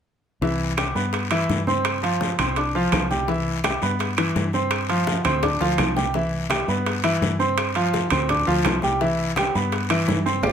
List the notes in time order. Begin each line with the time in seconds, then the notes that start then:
0.41 C2 E3 E4 E5, high bongo, long guiro
0.60 high conga
0.77 G3 G4 G5, high bongo, high conga, high timbale, short guiro, claves
0.95 G2 B3 B4 B5, high bongo, high conga, short guiro
1.13 high bongo, high conga, high timbale, long guiro
1.31 E3 E4 E5, high bongo, high conga, high timbale, claves
1.49 G2, high bongo, low bongo, high conga, short guiro
1.67 C4 C5 C6, high bongo, high conga, short guiro
1.85 high bongo, high conga, high timbale, long guiro, claves
2.03 F3 F4 F5, high conga, high timbale
2.21 high bongo, high conga, short guiro
2.39 C2 C4 C5 C6, high bongo, low conga, high timbale, short guiro, claves
2.56 D4 D5 D6, high bongo, high conga, high timbale, long guiro
2.75 F3 F4 F5, high bongo, high conga
2.92 C2, high bongo, low bongo, high conga, high timbale, low timbale, short guiro, claves
3.10 G3 G4 G5, high bongo, high conga, short guiro
3.28 E3 E4 E5, high bongo, high conga, long guiro
3.47 high conga
3.64 G3 G4 G5, high bongo, high conga, high timbale, short guiro, claves
3.82 G2 B3 B4 B5, high bongo, high conga, short guiro
3.99 high bongo, high conga, high timbale, long guiro
4.17 E3 E4 E5, high conga, high timbale, claves
4.36 G2, high bongo, low bongo, high conga, short guiro
4.53 C4 C5 C6, high bongo, short guiro
4.71 high bongo, high conga, high timbale, long guiro, claves
4.89 F3 F4 F5, high conga, high timbale
5.07 high bongo, high conga, short guiro
5.25 D2 C4 C5 C6, high bongo, low conga, high timbale, short guiro, claves
5.43 D4 D5 D6, high bongo, high conga, low conga, high timbale, long guiro
5.60 D2 F3 F4 F5, low bongo, high conga
5.78 C2, low bongo, high conga, high timbale, low timbale, short guiro, claves
5.96 G3 G4 G5, low bongo, high conga, short guiro
6.14 E3 E4 E5, high bongo, high conga, long guiro
6.32 high conga
6.50 G3 G4 G5, high bongo, high conga, high timbale, short guiro, claves
6.68 G2 B3 B4 B5, high bongo, high conga, short guiro
6.86 high bongo, high conga, high timbale, long guiro
7.04 E3 E4 E5, high bongo, high conga, high timbale, claves
7.21 G2, high bongo, low bongo, high conga, short guiro
7.39 C4 C5 C6, high bongo, short guiro
7.58 high bongo, high conga, high timbale, long guiro, claves
7.75 F3 F4 F5, high conga, high timbale
7.93 high bongo, high conga, short guiro
8.10 D2 C4 C5 C6, high bongo, low conga, high timbale, short guiro, claves
8.29 D4 D5 D6, high bongo, high conga, low conga, high timbale, long guiro
8.47 D2 F3 F4 F5, high bongo
8.64 C2, high bongo, low bongo, high conga, high timbale, low timbale, short guiro, claves
8.82 G3 G4 G5, high bongo, high conga, short guiro
9.01 E3 E4 E5, high bongo, high conga, long guiro
9.19 high conga
9.36 G3 G4 G5, high bongo, high conga, high timbale, short guiro, claves
9.55 G2 B3 B4 B5, high bongo, high conga, short guiro
9.72 high bongo, high conga, high timbale, long guiro
9.90 E3 E4 E5, high bongo, high conga, high timbale, claves
10.08 G2, high bongo, low bongo, high conga, low timbale, short guiro
10.26 C4 C5 C6, high bongo, short guiro
10.43 G1 F4 G4 C5, high bongo, high conga, high timbale, long guiro, claves